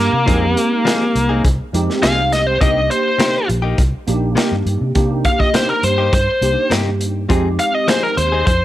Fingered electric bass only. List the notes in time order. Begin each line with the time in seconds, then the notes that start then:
0.00 G2
0.13 C3
0.27 F2
1.15 C2
1.45 C2
1.73 F2
2.03 C2
2.61 C2
3.49 A#1
3.78 C2
4.08 A#1
4.52 G2
4.66 G2
4.81 C3
4.95 C3
5.83 G2
6.13 G2
6.41 C2
6.71 G2
7.30 F2
8.17 D#2
8.47 F2